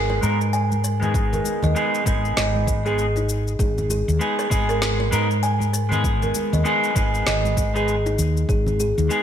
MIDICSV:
0, 0, Header, 1, 5, 480
1, 0, Start_track
1, 0, Key_signature, 5, "minor"
1, 0, Tempo, 612245
1, 896, Time_signature, 4, 2, 24, 8
1, 7234, End_track
2, 0, Start_track
2, 0, Title_t, "Kalimba"
2, 0, Program_c, 0, 108
2, 78, Note_on_c, 0, 71, 73
2, 170, Note_off_c, 0, 71, 0
2, 416, Note_on_c, 0, 80, 91
2, 553, Note_off_c, 0, 80, 0
2, 659, Note_on_c, 0, 71, 70
2, 794, Note_off_c, 0, 71, 0
2, 1042, Note_on_c, 0, 70, 64
2, 1266, Note_off_c, 0, 70, 0
2, 1281, Note_on_c, 0, 75, 72
2, 1335, Note_off_c, 0, 75, 0
2, 1619, Note_on_c, 0, 71, 73
2, 1754, Note_off_c, 0, 71, 0
2, 1858, Note_on_c, 0, 75, 97
2, 1993, Note_off_c, 0, 75, 0
2, 2240, Note_on_c, 0, 68, 75
2, 2465, Note_off_c, 0, 68, 0
2, 2481, Note_on_c, 0, 63, 68
2, 2807, Note_off_c, 0, 63, 0
2, 2815, Note_on_c, 0, 68, 79
2, 3046, Note_off_c, 0, 68, 0
2, 3060, Note_on_c, 0, 68, 70
2, 3194, Note_off_c, 0, 68, 0
2, 3440, Note_on_c, 0, 71, 93
2, 3666, Note_off_c, 0, 71, 0
2, 3678, Note_on_c, 0, 70, 90
2, 3770, Note_off_c, 0, 70, 0
2, 3920, Note_on_c, 0, 71, 69
2, 4011, Note_off_c, 0, 71, 0
2, 4256, Note_on_c, 0, 80, 93
2, 4392, Note_off_c, 0, 80, 0
2, 4495, Note_on_c, 0, 71, 71
2, 4632, Note_off_c, 0, 71, 0
2, 4878, Note_on_c, 0, 70, 67
2, 5104, Note_off_c, 0, 70, 0
2, 5122, Note_on_c, 0, 75, 68
2, 5176, Note_off_c, 0, 75, 0
2, 5458, Note_on_c, 0, 71, 71
2, 5593, Note_off_c, 0, 71, 0
2, 5696, Note_on_c, 0, 75, 97
2, 5833, Note_off_c, 0, 75, 0
2, 6082, Note_on_c, 0, 68, 73
2, 6306, Note_off_c, 0, 68, 0
2, 6319, Note_on_c, 0, 63, 72
2, 6646, Note_off_c, 0, 63, 0
2, 6655, Note_on_c, 0, 68, 77
2, 6886, Note_off_c, 0, 68, 0
2, 6896, Note_on_c, 0, 68, 71
2, 7032, Note_off_c, 0, 68, 0
2, 7234, End_track
3, 0, Start_track
3, 0, Title_t, "Clean electric guitar"
3, 0, Program_c, 1, 27
3, 0, Note_on_c, 1, 56, 94
3, 0, Note_on_c, 1, 59, 80
3, 0, Note_on_c, 1, 63, 82
3, 0, Note_on_c, 1, 68, 101
3, 148, Note_off_c, 1, 56, 0
3, 151, Note_off_c, 1, 59, 0
3, 153, Note_off_c, 1, 63, 0
3, 155, Note_off_c, 1, 68, 0
3, 165, Note_on_c, 1, 56, 85
3, 172, Note_on_c, 1, 59, 72
3, 176, Note_on_c, 1, 63, 74
3, 181, Note_on_c, 1, 70, 93
3, 295, Note_off_c, 1, 56, 0
3, 298, Note_off_c, 1, 59, 0
3, 300, Note_off_c, 1, 63, 0
3, 303, Note_off_c, 1, 70, 0
3, 782, Note_on_c, 1, 56, 85
3, 793, Note_on_c, 1, 59, 75
3, 804, Note_on_c, 1, 63, 77
3, 814, Note_on_c, 1, 68, 91
3, 1344, Note_off_c, 1, 56, 0
3, 1349, Note_off_c, 1, 59, 0
3, 1355, Note_off_c, 1, 63, 0
3, 1360, Note_off_c, 1, 68, 0
3, 1369, Note_on_c, 1, 56, 89
3, 1373, Note_on_c, 1, 59, 81
3, 1380, Note_on_c, 1, 63, 83
3, 1385, Note_on_c, 1, 68, 104
3, 1589, Note_off_c, 1, 56, 0
3, 1591, Note_off_c, 1, 59, 0
3, 1595, Note_off_c, 1, 63, 0
3, 1597, Note_off_c, 1, 68, 0
3, 1598, Note_on_c, 1, 56, 73
3, 1611, Note_on_c, 1, 59, 67
3, 1620, Note_on_c, 1, 63, 71
3, 1629, Note_on_c, 1, 68, 82
3, 2196, Note_off_c, 1, 56, 0
3, 2202, Note_off_c, 1, 59, 0
3, 2207, Note_off_c, 1, 63, 0
3, 2212, Note_off_c, 1, 68, 0
3, 2234, Note_on_c, 1, 56, 71
3, 2239, Note_on_c, 1, 59, 69
3, 2244, Note_on_c, 1, 63, 71
3, 2250, Note_on_c, 1, 68, 84
3, 2388, Note_off_c, 1, 56, 0
3, 2391, Note_off_c, 1, 59, 0
3, 2393, Note_off_c, 1, 63, 0
3, 2396, Note_off_c, 1, 68, 0
3, 3287, Note_on_c, 1, 56, 78
3, 3292, Note_on_c, 1, 59, 69
3, 3298, Note_on_c, 1, 63, 69
3, 3302, Note_on_c, 1, 68, 91
3, 3508, Note_off_c, 1, 56, 0
3, 3511, Note_off_c, 1, 59, 0
3, 3514, Note_off_c, 1, 63, 0
3, 3516, Note_off_c, 1, 68, 0
3, 3525, Note_on_c, 1, 56, 91
3, 3530, Note_on_c, 1, 59, 80
3, 3535, Note_on_c, 1, 63, 87
3, 3539, Note_on_c, 1, 68, 96
3, 3987, Note_off_c, 1, 56, 0
3, 3990, Note_off_c, 1, 59, 0
3, 3992, Note_off_c, 1, 63, 0
3, 3994, Note_off_c, 1, 68, 0
3, 4004, Note_on_c, 1, 56, 84
3, 4009, Note_on_c, 1, 59, 76
3, 4014, Note_on_c, 1, 63, 72
3, 4020, Note_on_c, 1, 70, 92
3, 4134, Note_off_c, 1, 56, 0
3, 4137, Note_off_c, 1, 59, 0
3, 4139, Note_off_c, 1, 63, 0
3, 4142, Note_off_c, 1, 70, 0
3, 4617, Note_on_c, 1, 56, 84
3, 4629, Note_on_c, 1, 59, 79
3, 4637, Note_on_c, 1, 63, 77
3, 4649, Note_on_c, 1, 68, 97
3, 5182, Note_off_c, 1, 56, 0
3, 5188, Note_off_c, 1, 59, 0
3, 5191, Note_off_c, 1, 63, 0
3, 5197, Note_off_c, 1, 68, 0
3, 5204, Note_on_c, 1, 56, 91
3, 5210, Note_on_c, 1, 59, 86
3, 5214, Note_on_c, 1, 63, 78
3, 5219, Note_on_c, 1, 68, 101
3, 5427, Note_off_c, 1, 56, 0
3, 5430, Note_off_c, 1, 59, 0
3, 5432, Note_off_c, 1, 63, 0
3, 5435, Note_off_c, 1, 68, 0
3, 5437, Note_on_c, 1, 56, 74
3, 5446, Note_on_c, 1, 59, 67
3, 5456, Note_on_c, 1, 63, 62
3, 5467, Note_on_c, 1, 68, 85
3, 6036, Note_off_c, 1, 56, 0
3, 6040, Note_off_c, 1, 59, 0
3, 6045, Note_off_c, 1, 63, 0
3, 6051, Note_off_c, 1, 68, 0
3, 6065, Note_on_c, 1, 56, 76
3, 6072, Note_on_c, 1, 59, 72
3, 6079, Note_on_c, 1, 63, 73
3, 6083, Note_on_c, 1, 68, 82
3, 6224, Note_off_c, 1, 56, 0
3, 6227, Note_off_c, 1, 59, 0
3, 6231, Note_off_c, 1, 63, 0
3, 6233, Note_off_c, 1, 68, 0
3, 7128, Note_on_c, 1, 56, 77
3, 7134, Note_on_c, 1, 59, 66
3, 7138, Note_on_c, 1, 63, 69
3, 7144, Note_on_c, 1, 68, 89
3, 7234, Note_off_c, 1, 56, 0
3, 7234, Note_off_c, 1, 59, 0
3, 7234, Note_off_c, 1, 63, 0
3, 7234, Note_off_c, 1, 68, 0
3, 7234, End_track
4, 0, Start_track
4, 0, Title_t, "Fretless electric bass"
4, 0, Program_c, 2, 35
4, 0, Note_on_c, 2, 32, 74
4, 139, Note_off_c, 2, 32, 0
4, 178, Note_on_c, 2, 44, 78
4, 1100, Note_off_c, 2, 44, 0
4, 1282, Note_on_c, 2, 39, 84
4, 1354, Note_off_c, 2, 39, 0
4, 1617, Note_on_c, 2, 32, 79
4, 1811, Note_off_c, 2, 32, 0
4, 1858, Note_on_c, 2, 32, 80
4, 2780, Note_off_c, 2, 32, 0
4, 2818, Note_on_c, 2, 32, 90
4, 3146, Note_off_c, 2, 32, 0
4, 3198, Note_on_c, 2, 39, 84
4, 3272, Note_off_c, 2, 39, 0
4, 3537, Note_on_c, 2, 32, 75
4, 3980, Note_off_c, 2, 32, 0
4, 4016, Note_on_c, 2, 44, 87
4, 4939, Note_off_c, 2, 44, 0
4, 5117, Note_on_c, 2, 39, 84
4, 5192, Note_off_c, 2, 39, 0
4, 5455, Note_on_c, 2, 32, 76
4, 5649, Note_off_c, 2, 32, 0
4, 5699, Note_on_c, 2, 32, 75
4, 6411, Note_off_c, 2, 32, 0
4, 6416, Note_on_c, 2, 39, 73
4, 6610, Note_off_c, 2, 39, 0
4, 6655, Note_on_c, 2, 32, 88
4, 6984, Note_off_c, 2, 32, 0
4, 7038, Note_on_c, 2, 39, 85
4, 7112, Note_off_c, 2, 39, 0
4, 7234, End_track
5, 0, Start_track
5, 0, Title_t, "Drums"
5, 76, Note_on_c, 9, 60, 52
5, 154, Note_off_c, 9, 60, 0
5, 179, Note_on_c, 9, 82, 69
5, 258, Note_off_c, 9, 82, 0
5, 322, Note_on_c, 9, 82, 30
5, 401, Note_off_c, 9, 82, 0
5, 418, Note_on_c, 9, 82, 38
5, 497, Note_off_c, 9, 82, 0
5, 562, Note_on_c, 9, 82, 30
5, 563, Note_on_c, 9, 63, 53
5, 640, Note_off_c, 9, 82, 0
5, 641, Note_off_c, 9, 63, 0
5, 659, Note_on_c, 9, 82, 66
5, 737, Note_off_c, 9, 82, 0
5, 802, Note_on_c, 9, 64, 70
5, 803, Note_on_c, 9, 82, 32
5, 880, Note_off_c, 9, 64, 0
5, 881, Note_off_c, 9, 82, 0
5, 896, Note_on_c, 9, 36, 119
5, 899, Note_on_c, 9, 82, 46
5, 974, Note_off_c, 9, 36, 0
5, 977, Note_off_c, 9, 82, 0
5, 1043, Note_on_c, 9, 64, 87
5, 1043, Note_on_c, 9, 82, 31
5, 1121, Note_off_c, 9, 82, 0
5, 1122, Note_off_c, 9, 64, 0
5, 1131, Note_on_c, 9, 63, 60
5, 1139, Note_on_c, 9, 82, 68
5, 1210, Note_off_c, 9, 63, 0
5, 1217, Note_off_c, 9, 82, 0
5, 1275, Note_on_c, 9, 64, 93
5, 1283, Note_on_c, 9, 82, 32
5, 1353, Note_off_c, 9, 64, 0
5, 1361, Note_off_c, 9, 82, 0
5, 1380, Note_on_c, 9, 82, 42
5, 1458, Note_off_c, 9, 82, 0
5, 1524, Note_on_c, 9, 82, 31
5, 1603, Note_off_c, 9, 82, 0
5, 1616, Note_on_c, 9, 36, 101
5, 1616, Note_on_c, 9, 60, 48
5, 1618, Note_on_c, 9, 63, 64
5, 1619, Note_on_c, 9, 82, 74
5, 1694, Note_off_c, 9, 60, 0
5, 1695, Note_off_c, 9, 36, 0
5, 1696, Note_off_c, 9, 63, 0
5, 1698, Note_off_c, 9, 82, 0
5, 1764, Note_on_c, 9, 82, 32
5, 1843, Note_off_c, 9, 82, 0
5, 1859, Note_on_c, 9, 38, 79
5, 1861, Note_on_c, 9, 82, 44
5, 1937, Note_off_c, 9, 38, 0
5, 1939, Note_off_c, 9, 82, 0
5, 2005, Note_on_c, 9, 63, 62
5, 2084, Note_off_c, 9, 63, 0
5, 2096, Note_on_c, 9, 36, 106
5, 2099, Note_on_c, 9, 82, 71
5, 2101, Note_on_c, 9, 60, 33
5, 2175, Note_off_c, 9, 36, 0
5, 2177, Note_off_c, 9, 82, 0
5, 2180, Note_off_c, 9, 60, 0
5, 2243, Note_on_c, 9, 82, 30
5, 2322, Note_off_c, 9, 82, 0
5, 2339, Note_on_c, 9, 82, 39
5, 2418, Note_off_c, 9, 82, 0
5, 2477, Note_on_c, 9, 60, 52
5, 2482, Note_on_c, 9, 82, 31
5, 2555, Note_off_c, 9, 60, 0
5, 2560, Note_off_c, 9, 82, 0
5, 2579, Note_on_c, 9, 82, 74
5, 2657, Note_off_c, 9, 82, 0
5, 2724, Note_on_c, 9, 82, 32
5, 2802, Note_off_c, 9, 82, 0
5, 2817, Note_on_c, 9, 36, 110
5, 2819, Note_on_c, 9, 82, 48
5, 2895, Note_off_c, 9, 36, 0
5, 2898, Note_off_c, 9, 82, 0
5, 2963, Note_on_c, 9, 64, 80
5, 2963, Note_on_c, 9, 82, 32
5, 3041, Note_off_c, 9, 64, 0
5, 3041, Note_off_c, 9, 82, 0
5, 3055, Note_on_c, 9, 63, 66
5, 3058, Note_on_c, 9, 82, 71
5, 3134, Note_off_c, 9, 63, 0
5, 3137, Note_off_c, 9, 82, 0
5, 3203, Note_on_c, 9, 82, 35
5, 3282, Note_off_c, 9, 82, 0
5, 3299, Note_on_c, 9, 82, 42
5, 3377, Note_off_c, 9, 82, 0
5, 3442, Note_on_c, 9, 82, 31
5, 3521, Note_off_c, 9, 82, 0
5, 3535, Note_on_c, 9, 60, 51
5, 3537, Note_on_c, 9, 36, 104
5, 3539, Note_on_c, 9, 63, 60
5, 3540, Note_on_c, 9, 82, 78
5, 3613, Note_off_c, 9, 60, 0
5, 3615, Note_off_c, 9, 36, 0
5, 3617, Note_off_c, 9, 63, 0
5, 3619, Note_off_c, 9, 82, 0
5, 3683, Note_on_c, 9, 82, 34
5, 3761, Note_off_c, 9, 82, 0
5, 3777, Note_on_c, 9, 38, 78
5, 3780, Note_on_c, 9, 82, 45
5, 3856, Note_off_c, 9, 38, 0
5, 3858, Note_off_c, 9, 82, 0
5, 3918, Note_on_c, 9, 60, 47
5, 3996, Note_off_c, 9, 60, 0
5, 4018, Note_on_c, 9, 82, 75
5, 4096, Note_off_c, 9, 82, 0
5, 4161, Note_on_c, 9, 82, 32
5, 4240, Note_off_c, 9, 82, 0
5, 4257, Note_on_c, 9, 82, 43
5, 4335, Note_off_c, 9, 82, 0
5, 4393, Note_on_c, 9, 63, 60
5, 4402, Note_on_c, 9, 82, 33
5, 4471, Note_off_c, 9, 63, 0
5, 4481, Note_off_c, 9, 82, 0
5, 4499, Note_on_c, 9, 82, 74
5, 4577, Note_off_c, 9, 82, 0
5, 4638, Note_on_c, 9, 64, 75
5, 4642, Note_on_c, 9, 82, 35
5, 4716, Note_off_c, 9, 64, 0
5, 4721, Note_off_c, 9, 82, 0
5, 4736, Note_on_c, 9, 36, 116
5, 4739, Note_on_c, 9, 82, 47
5, 4815, Note_off_c, 9, 36, 0
5, 4818, Note_off_c, 9, 82, 0
5, 4880, Note_on_c, 9, 82, 32
5, 4882, Note_on_c, 9, 64, 77
5, 4958, Note_off_c, 9, 82, 0
5, 4960, Note_off_c, 9, 64, 0
5, 4974, Note_on_c, 9, 82, 77
5, 4984, Note_on_c, 9, 63, 65
5, 5053, Note_off_c, 9, 82, 0
5, 5062, Note_off_c, 9, 63, 0
5, 5122, Note_on_c, 9, 82, 34
5, 5126, Note_on_c, 9, 64, 92
5, 5201, Note_off_c, 9, 82, 0
5, 5205, Note_off_c, 9, 64, 0
5, 5216, Note_on_c, 9, 82, 43
5, 5294, Note_off_c, 9, 82, 0
5, 5360, Note_on_c, 9, 82, 30
5, 5439, Note_off_c, 9, 82, 0
5, 5455, Note_on_c, 9, 36, 103
5, 5456, Note_on_c, 9, 60, 49
5, 5456, Note_on_c, 9, 63, 60
5, 5457, Note_on_c, 9, 82, 73
5, 5534, Note_off_c, 9, 36, 0
5, 5534, Note_off_c, 9, 60, 0
5, 5535, Note_off_c, 9, 63, 0
5, 5535, Note_off_c, 9, 82, 0
5, 5601, Note_on_c, 9, 82, 34
5, 5679, Note_off_c, 9, 82, 0
5, 5696, Note_on_c, 9, 38, 72
5, 5698, Note_on_c, 9, 82, 42
5, 5775, Note_off_c, 9, 38, 0
5, 5777, Note_off_c, 9, 82, 0
5, 5839, Note_on_c, 9, 63, 60
5, 5843, Note_on_c, 9, 82, 29
5, 5918, Note_off_c, 9, 63, 0
5, 5922, Note_off_c, 9, 82, 0
5, 5935, Note_on_c, 9, 36, 111
5, 5938, Note_on_c, 9, 82, 73
5, 5941, Note_on_c, 9, 60, 30
5, 6013, Note_off_c, 9, 36, 0
5, 6017, Note_off_c, 9, 82, 0
5, 6019, Note_off_c, 9, 60, 0
5, 6082, Note_on_c, 9, 82, 29
5, 6161, Note_off_c, 9, 82, 0
5, 6179, Note_on_c, 9, 82, 42
5, 6257, Note_off_c, 9, 82, 0
5, 6321, Note_on_c, 9, 82, 33
5, 6323, Note_on_c, 9, 60, 49
5, 6399, Note_off_c, 9, 82, 0
5, 6402, Note_off_c, 9, 60, 0
5, 6418, Note_on_c, 9, 82, 74
5, 6496, Note_off_c, 9, 82, 0
5, 6563, Note_on_c, 9, 82, 34
5, 6641, Note_off_c, 9, 82, 0
5, 6655, Note_on_c, 9, 36, 112
5, 6659, Note_on_c, 9, 82, 42
5, 6733, Note_off_c, 9, 36, 0
5, 6738, Note_off_c, 9, 82, 0
5, 6794, Note_on_c, 9, 64, 84
5, 6801, Note_on_c, 9, 82, 28
5, 6872, Note_off_c, 9, 64, 0
5, 6879, Note_off_c, 9, 82, 0
5, 6896, Note_on_c, 9, 63, 65
5, 6898, Note_on_c, 9, 82, 74
5, 6974, Note_off_c, 9, 63, 0
5, 6976, Note_off_c, 9, 82, 0
5, 7040, Note_on_c, 9, 82, 32
5, 7119, Note_off_c, 9, 82, 0
5, 7137, Note_on_c, 9, 82, 41
5, 7216, Note_off_c, 9, 82, 0
5, 7234, End_track
0, 0, End_of_file